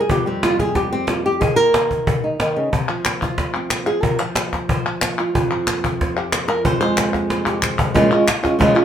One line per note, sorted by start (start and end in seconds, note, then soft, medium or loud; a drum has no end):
0.00 0.11 G#4 medium
0.10 1.41 F2 medium
0.10 0.27 G4 medium
0.10 cajon bass loud
0.26 1.39 G3 medium
0.26 0.43 C4 medium
0.43 0.59 F4 medium
0.43 cajon slap loud
0.59 0.76 G#4 loud
0.59 cajon bass medium
0.75 0.92 G4 medium
0.75 cajon bass loud
0.75 cajon slap soft
0.92 1.09 C4 loud
0.92 cajon slap soft
1.08 1.25 F4 medium
1.08 cajon slap loud
1.26 1.42 G4 loud
1.41 2.39 D#3 medium
1.41 1.56 G#4 medium
1.41 cajon bass loud
1.56 2.70 A#3 medium
1.56 2.06 A#4 loud
1.74 cajon slap loud
1.91 cajon bass medium
2.07 cajon bass loud
2.24 2.71 D#4 soft
2.40 2.56 D#3 medium
2.40 cajon slap medium
2.56 2.72 C#3 medium
2.73 2.89 C3 medium
2.73 cajon bass loud
2.90 4.21 F3 medium
3.05 cajon slap loud
3.05 clap medium
3.22 3.86 F4 medium
3.22 cajon bass medium
3.38 cajon bass loud
3.38 cajon slap soft
3.56 4.06 C4 soft
3.70 cajon slap loud
3.70 clap loud
3.86 4.03 G#4 medium
4.03 4.20 C3 medium
4.03 4.19 A#4 medium
4.03 cajon bass loud
4.19 5.51 F3 medium
4.19 4.68 C5 loud
4.35 cajon slap loud
4.35 clap medium
4.53 cajon bass medium
4.53 cajon slap soft
4.69 6.01 C5 medium
4.69 cajon bass loud
4.85 cajon slap soft
5.02 cajon slap loud
5.02 clap loud
5.20 6.17 F4 soft
5.35 6.64 F2 medium
5.35 cajon bass loud
5.51 7.51 F3 medium
5.67 cajon slap loud
5.67 clap medium
5.84 cajon bass medium
6.01 6.33 C5 medium
6.01 cajon bass loud
6.01 cajon slap soft
6.18 6.64 G4 soft
6.32 6.48 C5 medium
6.32 cajon slap loud
6.32 clap medium
6.48 6.65 A#4 medium
6.65 7.96 F2 medium
6.65 6.79 C5 loud
6.65 cajon bass loud
6.81 7.94 G#3 medium
6.81 7.30 C5 loud
6.97 cajon slap loud
6.97 clap loud
7.14 cajon bass medium
7.14 cajon slap soft
7.30 7.62 C5 soft
7.30 cajon slap loud
7.47 7.95 G4 soft
7.47 cajon slap medium
7.62 7.94 C5 medium
7.62 cajon bass medium
7.62 clap loud
7.79 cajon bass loud
7.94 8.11 A#2 medium
7.94 8.11 F3 medium
7.94 8.11 G#3 medium
7.94 8.11 C#4 medium
7.94 8.10 F4 loud
7.94 cajon bass loud
8.11 8.27 G#3 medium
8.11 8.27 C#4 medium
8.11 8.27 F4 medium
8.27 muted nylon-string guitar stroke medium
8.27 cajon slap loud
8.27 clap medium
8.43 8.59 G#3 medium
8.43 8.59 C#4 medium
8.43 8.59 F4 medium
8.43 cajon bass medium
8.43 cajon slap soft
8.59 8.76 A#2 loud
8.59 8.76 F3 loud
8.59 8.76 G#3 loud
8.59 8.75 C#4 medium
8.59 8.74 F4 loud
8.59 cajon bass loud
8.75 8.85 G#3 medium
8.75 8.85 C#4 medium
8.75 8.85 F4 medium
8.75 cajon slap soft